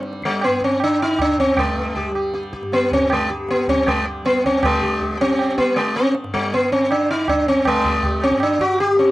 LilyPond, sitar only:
\new Staff \with { instrumentName = "Sitar" } { \time 4/4 \key g \major \tempo 4 = 158 << { r1 | r4 g'8 g'8 g'8 g'8 r4 | r8 g'8 r4. g'8 r4 | g'8 g'8 g'8 r8 g'8 r4. |
r1 | r8 g'8 r2. | } \\ { r8 g8 b8 c'8 d'8 ees'8 d'8 c'8 | aes4. r4. b8 c'8 | aes8 r8 b8 c'8 aes8 r8 b8 c'8 | aes4. c'4 b8 aes8 c'8 |
r8 g8 b8 c'8 d'8 ees'8 d'8 c'8 | aes4. c'8 d'8 fis'8 g'8 c'8 | } >> }